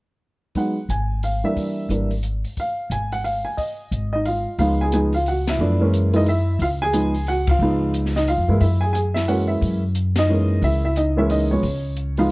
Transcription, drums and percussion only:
0.55 kick, open hi-hat
0.90 closed hi-hat
1.23 open hi-hat
1.56 kick, open hi-hat
1.90 closed hi-hat
2.11 open hi-hat
2.23 closed hi-hat
2.44 open hi-hat
2.57 kick, open hi-hat
2.91 closed hi-hat
3.12 open hi-hat
3.25 open hi-hat
3.58 kick, open hi-hat
3.92 closed hi-hat
4.26 open hi-hat
4.59 kick, open hi-hat
4.92 closed hi-hat
5.13 open hi-hat
5.26 open hi-hat
5.47 snare, ride
5.93 closed hi-hat
6.14 open hi-hat
6.26 open hi-hat
6.60 kick, open hi-hat
6.93 closed hi-hat
7.14 open hi-hat
7.27 open hi-hat
7.47 kick, ride
7.94 closed hi-hat
8.06 snare
8.15 snare, open hi-hat
8.28 open hi-hat
8.61 kick, open hi-hat
8.95 closed hi-hat
9.16 snare, open hi-hat
9.28 open hi-hat
9.62 kick, open hi-hat
9.95 closed hi-hat
10.16 snare, ride
10.62 kick, open hi-hat
10.96 closed hi-hat
11.30 open hi-hat
11.63 kick, open hi-hat
11.97 closed hi-hat
12.17 open hi-hat

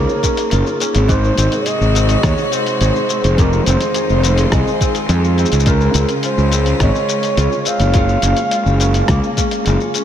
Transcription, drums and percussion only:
0.09 shaker
0.23 kick, closed hi-hat, shaker
0.37 closed hi-hat, shaker
0.51 closed hi-hat, shaker
0.66 shaker
0.80 closed hi-hat, shaker
0.95 closed hi-hat, shaker
1.09 kick, closed hi-hat, shaker
1.24 shaker
1.38 closed hi-hat, shaker
1.52 closed hi-hat, shaker
1.66 closed hi-hat, shaker
1.81 shaker
1.95 closed hi-hat, shaker
2.09 closed hi-hat, shaker
2.23 kick, cross-stick, closed hi-hat, shaker
2.38 shaker
2.52 closed hi-hat, shaker
2.66 closed hi-hat, shaker
2.81 closed hi-hat, shaker
2.96 shaker
3.09 closed hi-hat, shaker
3.24 closed hi-hat, shaker
3.38 kick, closed hi-hat, shaker
3.53 shaker
3.66 closed hi-hat, shaker
3.81 closed hi-hat, shaker
3.94 closed hi-hat, shaker
4.09 shaker
4.24 closed hi-hat, shaker
4.38 closed hi-hat, shaker
4.52 kick, cross-stick, closed hi-hat, shaker
4.67 shaker
4.81 kick, closed hi-hat, shaker
4.95 closed hi-hat, shaker
5.09 closed hi-hat, shaker
5.24 shaker
5.38 closed hi-hat, shaker
5.45 shaker
5.52 closed hi-hat, shaker
5.60 shaker
5.66 kick, closed hi-hat, shaker
5.81 shaker
5.94 closed hi-hat, shaker
6.09 closed hi-hat, shaker
6.23 closed hi-hat, shaker
6.38 shaker
6.52 closed hi-hat, shaker
6.66 closed hi-hat, shaker
6.80 kick, cross-stick, closed hi-hat, shaker
6.95 shaker
7.09 closed hi-hat, shaker
7.23 closed hi-hat, shaker
7.37 closed hi-hat, shaker
7.52 shaker
7.65 closed hi-hat, shaker
7.80 closed hi-hat, shaker
7.94 kick, closed hi-hat, shaker
8.09 shaker
8.22 closed hi-hat, shaker
8.37 closed hi-hat, shaker
8.51 closed hi-hat, shaker
8.66 shaker
8.80 closed hi-hat, shaker
8.94 closed hi-hat, shaker
9.08 kick, cross-stick, closed hi-hat, shaker
9.23 shaker
9.37 kick, closed hi-hat, shaker
9.51 closed hi-hat, shaker
9.66 closed hi-hat, shaker
9.80 shaker
9.94 closed hi-hat, shaker

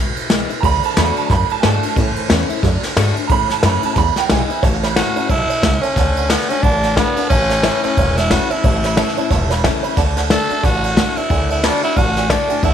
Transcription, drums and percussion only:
0.17 ride
0.30 snare, ride
0.50 ride
0.63 kick, ride
0.83 ride
0.97 snare, ride
1.17 ride
1.30 kick, snare, ride
1.50 ride
1.63 snare, ride
1.83 ride
1.96 kick, ride
2.16 ride
2.30 snare, ride
2.49 ride
2.63 kick, snare, ride
2.83 snare, ride
2.97 snare, ride
3.16 ride
3.29 kick, ride
3.50 snare, ride
3.63 snare, ride
3.83 ride
3.96 kick, snare, ride
4.16 snare, ride
4.30 snare, ride
4.50 ride
4.63 kick, snare, ride
4.83 snare, ride
4.96 snare, ride
5.16 ride
5.30 kick, ride
5.50 ride
5.63 kick, snare, ride
5.83 ride
5.96 kick, snare, ride
6.16 ride
6.30 snare, ride
6.50 ride
6.63 kick, ride
6.83 snare, ride
6.97 kick, snare, ride
7.17 ride
7.30 kick, ride
7.50 snare, ride
7.63 snare, ride
7.83 ride
7.97 kick, ride
8.17 snare, ride
8.31 kick, snare, ride
8.51 ride
8.64 kick, ride
8.84 snare, ride
8.97 snare, ride
9.17 ride
9.31 kick, snare, ride
9.51 snare, ride
9.64 kick, snare, ride
9.84 ride
9.97 kick, snare, ride
10.17 snare, ride
10.30 snare, ride
10.50 ride
10.64 kick, snare, ride
10.84 ride
10.97 kick, snare, ride
11.17 ride
11.30 kick, ride
11.50 ride
11.64 snare, ride
11.84 ride
11.97 kick, ride
12.17 snare, ride
12.30 kick, snare, ride
12.50 ride
12.63 kick, ride

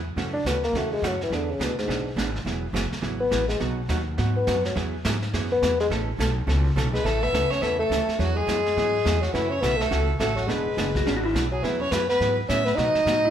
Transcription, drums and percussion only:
0.18 brush sweep, snare
0.46 snare, hi-hat pedal
0.64 snare
0.75 brush sweep, snare
1.04 snare, hi-hat pedal
1.21 snare
1.32 brush sweep, snare
1.61 snare, hi-hat pedal
1.79 snare
1.90 brush sweep, snare
2.18 snare, hi-hat pedal
2.36 snare
2.47 brush sweep, snare
2.76 snare, hi-hat pedal
2.92 snare
3.03 brush sweep, snare
3.32 snare, hi-hat pedal
3.49 snare
3.60 brush sweep, snare
3.89 snare, hi-hat pedal
4.18 brush sweep, snare
4.47 snare, hi-hat pedal
4.65 snare
4.76 brush sweep, snare
5.05 snare, hi-hat pedal
5.22 snare
5.33 brush sweep, snare
5.63 snare, hi-hat pedal
5.80 snare
5.91 brush sweep, snare
6.20 snare, hi-hat pedal
6.49 brush sweep, snare
6.78 snare, hi-hat pedal
6.95 snare
7.06 brush sweep, snare
7.34 snare, hi-hat pedal
7.52 snare
7.63 brush sweep, snare
7.92 snare, hi-hat pedal
8.09 snare
8.20 brush sweep, snare
8.48 snare, hi-hat pedal
8.66 snare
8.77 brush sweep, snare
9.06 snare, hi-hat pedal
9.23 snare
9.35 brush sweep, snare
9.63 snare, hi-hat pedal
9.80 snare
9.92 brush sweep, snare
10.20 snare, hi-hat pedal
10.37 snare
10.49 brush sweep, snare
10.78 snare, hi-hat pedal
10.95 kick, snare
11.07 brush sweep, snare
11.35 snare, hi-hat pedal
11.64 brush sweep, snare
11.92 snare, hi-hat pedal
12.10 snare
12.21 brush sweep, snare
12.50 snare, hi-hat pedal
12.67 snare
12.78 brush sweep, snare
12.95 snare
13.07 snare, hi-hat pedal

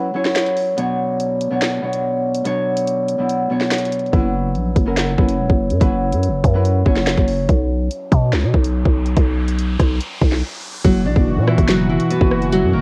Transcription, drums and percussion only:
0.25 snare
0.36 snare, clap, closed hi-hat
0.46 closed hi-hat
0.57 open hi-hat
0.78 closed hi-hat
1.20 closed hi-hat
1.41 closed hi-hat
1.62 snare, clap, closed hi-hat
1.93 closed hi-hat
2.35 closed hi-hat
2.45 closed hi-hat
2.77 closed hi-hat
2.87 closed hi-hat
3.08 closed hi-hat
3.29 closed hi-hat
3.61 snare
3.71 snare, clap, closed hi-hat
3.78 closed hi-hat
3.85 closed hi-hat
3.92 closed hi-hat, open hi-hat
3.99 closed hi-hat
4.06 closed hi-hat
4.13 kick, closed hi-hat
4.55 closed hi-hat
4.76 kick, closed hi-hat
4.97 snare, clap, closed hi-hat
5.18 kick
5.29 closed hi-hat
5.50 kick
5.70 closed hi-hat
5.81 kick, closed hi-hat
6.12 closed hi-hat
6.23 closed hi-hat
6.44 kick, closed hi-hat
6.65 closed hi-hat
6.86 kick
6.96 snare
7.07 snare, clap, closed hi-hat
7.17 kick, closed hi-hat
7.28 open hi-hat
7.49 kick, closed hi-hat
7.91 closed hi-hat
8.12 kick, closed hi-hat
8.33 snare, clap, closed hi-hat
8.54 kick
8.64 closed hi-hat
8.85 kick
9.06 closed hi-hat
9.17 kick, closed hi-hat
9.48 closed hi-hat
9.59 closed hi-hat
9.80 kick, cross-stick, closed hi-hat
10.01 closed hi-hat
10.22 kick
10.32 snare
10.85 kick, closed hi-hat
11.16 kick
11.48 cross-stick
11.58 kick, closed hi-hat
11.69 snare, clap, closed hi-hat
12.00 closed hi-hat
12.11 closed hi-hat
12.21 kick
12.31 cross-stick
12.42 closed hi-hat
12.52 closed hi-hat

